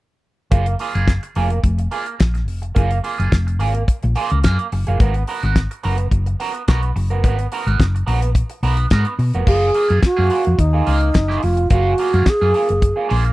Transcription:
0.51 F#1 A#3 F4 G#4, kick, closed hi-hat
0.66 muted clean electric guitar stroke, closed hi-hat
0.79 A#3 F4 G#4, open hi-hat
0.95 F#1 A#3 F4 G#4, closed hi-hat
1.07 kick, snare, closed hi-hat
1.23 muted clean electric guitar stroke, closed hi-hat
1.35 F1 A#3 F4 G#4, open hi-hat
1.50 muted clean electric guitar stroke, closed hi-hat
1.64 F1, kick, closed hi-hat
1.78 muted clean electric guitar stroke, closed hi-hat
1.91 A#3 F4 G#4, open hi-hat
2.06 muted clean electric guitar stroke, closed hi-hat
2.19 A#1, muted clean electric guitar stroke, kick, snare, closed hi-hat
2.34 muted clean electric guitar stroke, snare, closed hi-hat
2.48 F1, open hi-hat
2.62 muted clean electric guitar stroke, closed hi-hat
2.75 F#1 A#3 F4 G#4, kick, closed hi-hat
2.91 muted clean electric guitar stroke, closed hi-hat
3.04 A#3 F4 G#4, open hi-hat
3.18 F#1 A#3 F4 G#4, closed hi-hat
3.32 F1, kick, snare, closed hi-hat
3.47 muted clean electric guitar stroke, closed hi-hat
3.59 G#1 A#3 F4 G#4, open hi-hat
3.75 muted clean electric guitar stroke, closed hi-hat
3.88 kick, closed hi-hat
4.02 A#1, muted clean electric guitar stroke, closed hi-hat
4.15 A#3 F4 G#4, open hi-hat
4.30 C#2, muted clean electric guitar stroke, closed hi-hat
4.44 F#2 A#3 F4 G#4, kick, snare, closed hi-hat
4.59 muted clean electric guitar stroke, closed hi-hat
4.72 F#1, muted clean electric guitar stroke, open hi-hat
4.87 F#1 A#3 F4 G#4, closed hi-hat
5.00 G#1 B3 F#4 A#4, kick, closed hi-hat
5.14 muted clean electric guitar stroke, closed hi-hat
5.27 B3 F#4 A#4, open hi-hat
5.43 G#1 B3 F#4 A#4, closed hi-hat
5.56 kick, snare, closed hi-hat
5.71 muted clean electric guitar stroke, closed hi-hat
5.83 F#1 B3 F#4 A#4, open hi-hat
5.98 muted clean electric guitar stroke, closed hi-hat
6.11 F#1, kick, closed hi-hat
6.26 muted clean electric guitar stroke, closed hi-hat
6.40 B3 F#4 A#4, open hi-hat
6.54 muted clean electric guitar stroke, closed hi-hat
6.68 B1 B3 F#4 A#4, kick, snare, closed hi-hat
6.82 muted clean electric guitar stroke, closed hi-hat
6.96 F#1, muted clean electric guitar stroke, open hi-hat
7.10 B3 F#4 A#4, closed hi-hat
7.24 G#1 B3 F#4 A#4, kick, closed hi-hat
7.39 muted clean electric guitar stroke, closed hi-hat
7.52 B3 F#4 A#4, open hi-hat
7.67 G#1 B3 F#4 A#4, closed hi-hat
7.79 F#1, kick, snare, closed hi-hat
7.95 muted clean electric guitar stroke, closed hi-hat
8.07 A#1 B3 F#4 A#4, open hi-hat
8.22 muted clean electric guitar stroke, closed hi-hat
8.35 kick, closed hi-hat
8.50 muted clean electric guitar stroke, closed hi-hat
8.63 B1 B3 F#4 A#4, open hi-hat
8.77 muted clean electric guitar stroke, closed hi-hat
8.90 G#2 B3 F#4 A#4, kick, snare, closed hi-hat
9.05 muted clean electric guitar stroke, closed hi-hat
9.19 B2, muted clean electric guitar stroke, open hi-hat
9.33 F1 B3 F#4 A#4, closed hi-hat
9.47 F#1 A#3 F4 G#4, kick, crash
9.74 A#3 F4 G#4, open hi-hat
9.88 F#2 A#3 F4 G#4, closed hi-hat
10.02 F#4, muted clean electric guitar stroke, kick, snare, closed hi-hat
10.17 F#2 A#3 F4 G#4
10.30 A#3 F4 G#4, open hi-hat
10.44 F2, muted clean electric guitar stroke, closed hi-hat
10.58 D#2 D#4, muted clean electric guitar stroke, kick, closed hi-hat
10.73 A#3 F4 G#4
10.86 C#2 A#3 F4 G#4, open hi-hat
11.00 muted clean electric guitar stroke, closed hi-hat
11.14 F#1, muted clean electric guitar stroke, kick, snare, closed hi-hat
11.28 A#3 F4 G#4, snare
11.42 F1 F4, muted clean electric guitar stroke, open hi-hat
11.57 muted clean electric guitar stroke, closed hi-hat
11.70 F#1 A#3 F4 F#4 G#4, kick, closed hi-hat
11.98 A#3 F4 G#4, open hi-hat
12.13 F#2 A#3 F4 G#4, closed hi-hat
12.26 G#4, muted clean electric guitar stroke, kick, snare, closed hi-hat
12.41 F#2 A#3 F4 G#4
12.54 A#3 F4 G#4, open hi-hat
12.69 F#1, muted clean electric guitar stroke, closed hi-hat
12.82 muted clean electric guitar stroke, kick, closed hi-hat
12.96 A#3 F4 G#4
13.09 A#1 A#3 F4 G#4, open hi-hat
13.25 muted clean electric guitar stroke, closed hi-hat

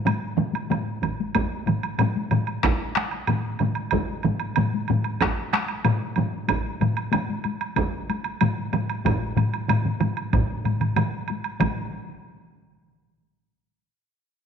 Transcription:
0.05 taiko low-mid, taiko mid, taiko high, high woodblock
0.37 taiko low-mid, taiko mid, taiko high
0.54 taiko high, high woodblock
0.70 taiko low-mid, taiko mid, taiko high, high woodblock
1.03 taiko, taiko low-mid, taiko mid, taiko high, high woodblock
1.20 taiko high
1.35 taiko, taiko high, high woodblock
1.51 taiko high
1.66 taiko low-mid, taiko mid, taiko high, high woodblock
1.83 taiko high, high woodblock
1.99 taiko low-mid, taiko mid, taiko high, high woodblock
2.16 taiko high
2.31 taiko low-mid, taiko mid, taiko high, high woodblock
2.47 taiko high, high woodblock
2.63 taiko rim, taiko, taiko high, high woodblock
2.81 taiko high
2.95 taiko rim, taiko high, high woodblock
3.11 taiko high, high woodblock
3.27 taiko low-mid, taiko mid, taiko high, high woodblock
3.45 taiko high
3.59 taiko low-mid, taiko mid, taiko high, high woodblock
3.75 taiko high, high woodblock
3.91 taiko, taiko high, high woodblock
4.09 taiko high
4.23 taiko low-mid, taiko mid, taiko high, high woodblock
4.40 taiko high, high woodblock
4.56 taiko low-mid, taiko mid, taiko high, high woodblock
4.74 taiko high
4.88 taiko low-mid, taiko mid, taiko high, high woodblock
5.04 taiko high, high woodblock
5.21 taiko rim, taiko, taiko high, high woodblock
5.38 taiko high
5.53 taiko rim, taiko high, high woodblock
5.68 taiko high, high woodblock
5.85 taiko low-mid, taiko mid, taiko high, high woodblock
6.01 taiko high
6.16 taiko low-mid, taiko mid, taiko high, high woodblock
6.33 taiko high
6.49 taiko, taiko high, high woodblock
6.66 taiko high
6.81 taiko low-mid, taiko mid, taiko high, high woodblock
6.97 taiko high, high woodblock
7.12 taiko low-mid, taiko mid, taiko high, high woodblock
7.29 taiko high
7.44 taiko high, high woodblock
7.61 taiko high, high woodblock
7.76 taiko, taiko high, high woodblock
7.93 taiko high
8.10 taiko high, high woodblock
8.24 taiko high, high woodblock
8.41 taiko low-mid, taiko mid, taiko high, high woodblock
8.58 taiko high
8.73 taiko low-mid, taiko mid, taiko high, high woodblock
8.90 taiko high, high woodblock
9.05 taiko, taiko low-mid, taiko mid, taiko high, high woodblock
9.22 taiko high
9.36 taiko low-mid, taiko mid, taiko high, high woodblock
9.54 taiko high, high woodblock
9.68 taiko low-mid, taiko mid, taiko high, high woodblock
9.85 taiko low-mid, taiko mid, taiko high
10.00 taiko low-mid, taiko mid, taiko high, high woodblock
10.17 high woodblock
10.33 taiko, taiko low-mid, taiko mid, taiko high, high woodblock
10.50 taiko high
10.65 taiko low-mid, taiko mid, taiko high, high woodblock
10.80 taiko low-mid, taiko mid, taiko high, high woodblock
10.96 taiko low-mid, taiko mid, taiko high, high woodblock
11.14 taiko high
11.28 taiko high, high woodblock
11.44 taiko high, high woodblock
11.60 taiko, taiko low-mid, taiko mid, taiko high, high woodblock

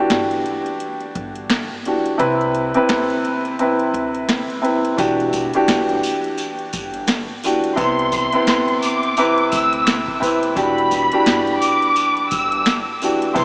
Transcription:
Already playing: E3 D4 F#4
0.00 G4
0.10 G1, snare, closed hi-hat
0.31 closed hi-hat
0.46 closed hi-hat
0.66 closed hi-hat
0.80 closed hi-hat
1.00 closed hi-hat
1.15 G1, kick, closed hi-hat
1.35 closed hi-hat
1.50 snare, closed hi-hat
1.85 E3 D4 F#4 G4, closed hi-hat
2.06 closed hi-hat
2.18 C2 C3 C4 E4 B4, closed hi-hat
2.41 closed hi-hat
2.55 closed hi-hat
2.74 C3 C4 E4 B4, closed hi-hat
2.89 D2, snare, closed hi-hat
3.10 closed hi-hat
3.25 closed hi-hat
3.45 closed hi-hat
3.59 C3 C4 E4 B4, closed hi-hat
3.79 closed hi-hat
3.94 D2, closed hi-hat
4.15 closed hi-hat
4.29 snare, closed hi-hat
4.50 closed hi-hat
4.62 C3 C4 E4 B4, closed hi-hat
4.85 closed hi-hat
4.97 E1 E3 D4 F#4 G4, kick, closed hi-hat, sleigh bells
5.20 closed hi-hat
5.33 kick, closed hi-hat, sleigh bells
5.53 E3 D4 F#4 G4, closed hi-hat
5.68 G1, snare, closed hi-hat, sleigh bells
5.89 closed hi-hat
6.03 closed hi-hat, sleigh bells
6.24 closed hi-hat
6.38 closed hi-hat, sleigh bells
6.59 closed hi-hat
6.73 G1, kick, closed hi-hat, sleigh bells
6.94 closed hi-hat
7.07 snare, closed hi-hat, sleigh bells
7.44 E3 D4 F#4 G4, closed hi-hat, sleigh bells
7.64 closed hi-hat
7.76 C2 C3 B3 C4 E4 C6, kick, closed hi-hat, sleigh bells
7.99 closed hi-hat
8.12 kick, closed hi-hat, sleigh bells
8.32 C3 B3 C4 E4, closed hi-hat
8.47 D2, snare, closed hi-hat, sleigh bells
8.68 closed hi-hat
8.82 D6, closed hi-hat, sleigh bells
9.03 closed hi-hat
9.17 C3 C4 E4 B4, closed hi-hat, sleigh bells
9.38 closed hi-hat
9.52 D2 E6, kick, closed hi-hat, sleigh bells
9.73 closed hi-hat
9.86 snare, closed hi-hat, sleigh bells
10.08 kick
10.20 C3 C4 E4 B4, kick, closed hi-hat, sleigh bells
10.43 closed hi-hat
10.55 E1 E3 D4 F#4 G4 B5, kick, closed hi-hat, sleigh bells
10.78 closed hi-hat
10.91 kick, closed hi-hat, sleigh bells
11.12 E3 D4 F#4 G4, closed hi-hat
11.26 G1, snare, closed hi-hat, sleigh bells
11.47 closed hi-hat
11.60 D6, closed hi-hat, sleigh bells
11.82 closed hi-hat
11.96 closed hi-hat, sleigh bells
12.17 closed hi-hat
12.31 G1 E6, kick, closed hi-hat, sleigh bells
12.52 closed hi-hat
12.65 snare, closed hi-hat, sleigh bells
13.02 E3 D4 F#4 G4, closed hi-hat, sleigh bells
13.22 closed hi-hat
13.34 C2 C3 B3 C4 E4 C6, kick, closed hi-hat, sleigh bells

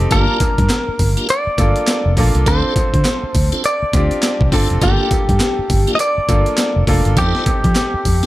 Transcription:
Already playing: C4 D#4 G4 A4
0.11 G1 A#3 D4 F4 G4 A#4, kick, closed hi-hat, tambourine, cowbell
0.19 A5
0.40 muted fingered electric bass stroke, kick, closed hi-hat, tambourine, cowbell
0.58 G2, kick, closed hi-hat
0.69 snare, clap, closed hi-hat, tambourine, cowbell
0.88 muted fingered electric bass stroke
0.99 G1, kick, open hi-hat, tambourine
1.17 A#3 D4 F4 G4, closed hi-hat
1.29 D5, closed hi-hat, tambourine, cowbell
1.47 muted fingered electric bass stroke
1.58 G1 A#3 D4 F4 A4, kick, closed hi-hat, tambourine, cowbell
1.76 closed hi-hat
1.87 snare, clap, closed hi-hat, tambourine, cowbell
2.06 F1
2.17 A#1 A#3 D4 F4 A4, kick, open hi-hat
2.35 C2, closed hi-hat
2.46 D2 C4 D4 F4 A4 C5, kick, closed hi-hat, tambourine, cowbell
2.76 muted fingered electric bass stroke, kick, closed hi-hat, tambourine, cowbell
2.94 D3, kick, closed hi-hat
3.05 snare, clap, closed hi-hat, tambourine, cowbell
3.23 muted fingered electric bass stroke
3.35 D2, kick, open hi-hat, tambourine
3.52 C4 D4 F4 A4, closed hi-hat
3.64 D5, closed hi-hat, tambourine, cowbell
3.83 muted fingered electric bass stroke
3.93 D2 C4 D4 F4 G4, kick, closed hi-hat, tambourine, cowbell
4.11 closed hi-hat
4.22 snare, clap, closed hi-hat, tambourine, cowbell
4.41 C2, kick
4.52 G1 C4 D4 F4 A4, kick, open hi-hat
4.70 F1, closed hi-hat
4.81 G1 A#3 D4 F4 G4 A4, kick, closed hi-hat, tambourine, cowbell
5.11 muted fingered electric bass stroke, kick, closed hi-hat, tambourine, cowbell
5.29 G2, kick, closed hi-hat
5.40 snare, clap, closed hi-hat, tambourine, cowbell
5.59 muted fingered electric bass stroke
5.70 G1, kick, open hi-hat, tambourine
5.87 A#3 D4 F4 G4, closed hi-hat
5.95 D#5, closed hi-hat, tambourine, cowbell
6.00 D5
6.18 muted fingered electric bass stroke
6.28 G1 A#3 D4 F4 A4, kick, closed hi-hat, tambourine, cowbell
6.46 closed hi-hat
6.57 snare, clap, closed hi-hat, tambourine, cowbell
6.76 F1
6.87 F1 A#3 D4 F4 A4, kick, open hi-hat
7.05 G1, closed hi-hat
7.17 F2 C4 D#4 F4 G4 A4, kick, closed hi-hat, tambourine, cowbell
7.35 snare
7.46 muted fingered electric bass stroke, kick, closed hi-hat, tambourine, cowbell
7.64 F3, kick, closed hi-hat
7.75 snare, clap, closed hi-hat, tambourine, cowbell
7.94 muted fingered electric bass stroke
8.05 F2, kick, open hi-hat, tambourine
8.23 snare, closed hi-hat

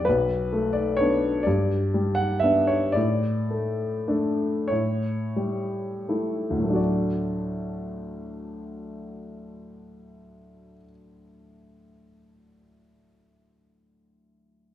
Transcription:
0.05 B1 B4
0.53 A3
0.73 D5
0.97 B3 D4 C#5
1.43 G2 D5
1.94 G3
2.15 F#5
2.40 B3 E5
2.44 D4
2.67 C#5
2.92 A2 D5
3.51 A3
4.08 A3 D4
4.68 A2 C#5
5.36 G3
6.09 A3 E4
6.50 D2
6.56 A2
6.60 F#3
6.64 A3
6.69 D4
6.74 F#4 D5

